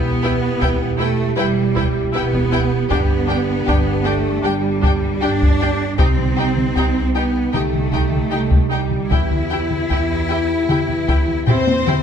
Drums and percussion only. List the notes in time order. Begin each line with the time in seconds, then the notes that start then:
0.62 taiko
1.77 taiko
2.34 taiko
2.91 taiko
3.68 taiko
4.83 taiko
5.42 taiko
5.99 taiko
6.18 taiko mid
6.57 taiko mid
6.76 taiko
7.54 taiko mid
7.74 taiko mid
7.93 taiko
8.12 taiko mid
8.51 taiko
8.91 taiko mid
9.11 taiko
9.31 taiko mid
9.70 taiko mid
9.90 taiko
10.69 taiko mid
10.88 taiko mid
11.08 taiko
11.28 taiko mid
11.47 taiko low-mid
11.67 taiko high
11.87 taiko mid